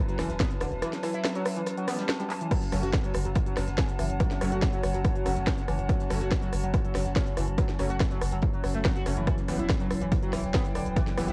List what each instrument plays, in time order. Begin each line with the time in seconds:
Already playing: synth drone F#3 C#4, ambient pad E4 B4 A5
0.08 analog synth lead F#3, closed hi-hat
0.19 sub bass E1, analog synth lead E3, cross-stick, snare, closed hi-hat, open hi-hat
0.30 sub bass E1, snare, closed hi-hat
0.39 analog synth lead B3, kick, cross-stick, snare, closed hi-hat
0.51 snare, closed hi-hat
0.60 sub bass E1, analog synth lead D3, cross-stick, closed hi-hat, open hi-hat
0.72 sub bass E1, snare, closed hi-hat
0.82 analog synth lead E3, cross-stick, closed hi-hat
0.93 snare, closed hi-hat
1.03 analog synth lead E3, cross-stick, snare, closed hi-hat, open hi-hat
1.14 analog synth lead E4, closed hi-hat
1.24 cross-stick, snare, closed hi-hat
1.35 analog synth lead F#3, snare, closed hi-hat
1.45 cross-stick, closed hi-hat, open hi-hat
1.56 analog synth lead E3, closed hi-hat
1.66 cross-stick, closed hi-hat
1.77 analog synth lead F#3, closed hi-hat
1.88 synth stab E3 G3 B3, analog synth lead B3, cross-stick, snare, closed hi-hat, open hi-hat
1.98 analog synth lead G3, snare, closed hi-hat
2.09 cross-stick, snare, closed hi-hat
2.20 analog synth lead G3, snare, closed hi-hat
2.30 clap, closed hi-hat, open hi-hat
2.41 analog synth lead E3, closed hi-hat
2.51 analog synth lead F#3, synth drone F#3 C#4, ambient pad F#4, kick, cross-stick, closed hi-hat, crash
2.55 ambient pad C#5
2.61 snare, closed hi-hat
2.69 sub bass F#1, analog synth lead F#3, synth stab F#3 A3 C#4, ambient pad F#5, cross-stick, closed hi-hat, open hi-hat
2.83 sub bass F#1, analog synth lead F#4, closed hi-hat
2.93 kick, cross-stick, snare, closed hi-hat
3.04 analog synth lead F#3, closed hi-hat
3.14 sub bass F#1, cross-stick, closed hi-hat, open hi-hat
3.25 sub bass F#1, analog synth lead F#3, closed hi-hat
3.35 kick, cross-stick, closed hi-hat
3.46 analog synth lead F#3, closed hi-hat
3.57 sub bass F#1, analog synth lead F#3, cross-stick, snare, closed hi-hat, open hi-hat
3.68 sub bass F#1, snare, closed hi-hat
3.78 analog synth lead C#4, kick, cross-stick, snare, closed hi-hat
3.88 snare, closed hi-hat
3.99 sub bass F#1, analog synth lead E3, cross-stick, closed hi-hat, open hi-hat
4.10 sub bass F#1, closed hi-hat
4.20 analog synth lead F#3, kick, cross-stick, closed hi-hat
4.31 snare, closed hi-hat
4.41 sub bass F#1, analog synth lead F#3, synth stab F#3 A3 C#4, cross-stick, closed hi-hat, open hi-hat
4.52 sub bass F#1, analog synth lead F#4, closed hi-hat
4.62 kick, cross-stick, snare, closed hi-hat
4.73 analog synth lead F#3, snare, closed hi-hat
4.83 sub bass F#1, cross-stick, closed hi-hat, open hi-hat
4.94 sub bass F#1, analog synth lead F#3, closed hi-hat
5.05 kick, cross-stick, closed hi-hat
5.15 analog synth lead F#3, closed hi-hat
5.26 sub bass F#1, analog synth lead F#3, synth stab F#3 A3 C#4, cross-stick, closed hi-hat, open hi-hat
5.36 sub bass F#1, snare, closed hi-hat
5.47 analog synth lead C#4, kick, cross-stick, snare, closed hi-hat
5.58 snare, closed hi-hat
5.68 sub bass F#1, analog synth lead E3, cross-stick, closed hi-hat, open hi-hat
5.79 sub bass F#1, closed hi-hat
5.89 analog synth lead F#3, kick, cross-stick, closed hi-hat
6.00 snare, closed hi-hat
6.10 sub bass F#1, analog synth lead F#3, synth stab F#3 A3 C#4, cross-stick, closed hi-hat, open hi-hat
6.21 sub bass F#1, analog synth lead F#4, closed hi-hat
6.31 kick, cross-stick, snare, closed hi-hat
6.42 analog synth lead F#3, closed hi-hat
6.53 sub bass F#1, cross-stick, closed hi-hat, open hi-hat
6.63 sub bass F#1, analog synth lead F#3, closed hi-hat
6.74 kick, cross-stick, closed hi-hat
6.85 analog synth lead F#3, closed hi-hat
6.95 sub bass F#1, analog synth lead F#3, cross-stick, snare, closed hi-hat, open hi-hat
7.06 sub bass F#1, snare, closed hi-hat
7.16 analog synth lead C#4, kick, cross-stick, snare, closed hi-hat
7.26 snare, closed hi-hat
7.37 sub bass F#1, analog synth lead E3, cross-stick, closed hi-hat, open hi-hat
7.48 sub bass F#1, closed hi-hat
7.58 analog synth lead F#3, kick, cross-stick, closed hi-hat
7.69 snare, closed hi-hat
7.79 sub bass F#1, analog synth lead F#3, synth stab F#3 A3 C#4, cross-stick, closed hi-hat, open hi-hat
7.90 sub bass F#1, analog synth lead F#4, closed hi-hat
8.00 kick, cross-stick, snare, closed hi-hat
8.11 analog synth lead F#3, snare, closed hi-hat
8.21 sub bass F#1, cross-stick, closed hi-hat, open hi-hat
8.32 sub bass F#1, analog synth lead F#3, closed hi-hat
8.42 kick, cross-stick, closed hi-hat
8.54 analog synth lead F#3, closed hi-hat
8.64 sub bass F#1, analog synth lead F#3, cross-stick, closed hi-hat, open hi-hat
8.75 sub bass F#1, analog synth lead A3, snare, closed hi-hat
8.85 analog synth lead F#3, kick, cross-stick, snare, closed hi-hat
8.96 analog synth lead F#4, snare, closed hi-hat
9.06 sub bass F#1, synth stab F#3 A3 C#4, cross-stick, closed hi-hat, open hi-hat
9.17 sub bass F#1, analog synth lead E3, closed hi-hat
9.27 analog synth lead E3, ambient pad E4, kick, cross-stick, closed hi-hat
9.38 snare, closed hi-hat
9.48 sub bass E1, synth stab E3 G3 B3, analog synth lead E3, cross-stick, closed hi-hat, open hi-hat
9.59 sub bass E1, analog synth lead E4, closed hi-hat
9.68 ambient pad B4, kick, cross-stick, snare, closed hi-hat
9.80 analog synth lead F#3, closed hi-hat
9.90 sub bass E1, ambient pad G5, cross-stick, closed hi-hat, open hi-hat
10.01 sub bass E1, analog synth lead E3, closed hi-hat
10.12 kick, cross-stick, closed hi-hat
10.23 analog synth lead F#3, closed hi-hat
10.33 sub bass E1, analog synth lead E3, cross-stick, snare, closed hi-hat, open hi-hat
10.44 sub bass E1, snare, closed hi-hat
10.54 analog synth lead B3, kick, cross-stick, snare, closed hi-hat
10.65 snare, closed hi-hat
10.75 sub bass E1, analog synth lead D3, cross-stick, closed hi-hat, open hi-hat
10.86 sub bass E1, closed hi-hat
10.96 analog synth lead E3, kick, cross-stick, closed hi-hat
11.07 snare, closed hi-hat
11.17 sub bass E1, analog synth lead E3, synth stab E3 G3 B3, cross-stick, closed hi-hat, open hi-hat
11.28 sub bass E1, analog synth lead E4, closed hi-hat